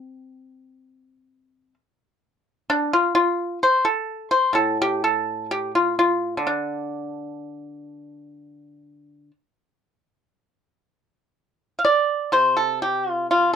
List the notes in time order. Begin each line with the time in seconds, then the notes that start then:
Already playing: C4
2.70 D4
2.93 F4
3.15 F4
3.63 C5
3.85 A4
4.31 C5
4.53 A2 A4
4.82 G4
5.04 A4
5.51 G4
5.75 F4
5.99 F4
6.37 D3
6.47 D4
11.79 F5
11.85 D5
12.32 C3 C5
12.57 A4
12.82 G4
13.10 F4
13.31 F4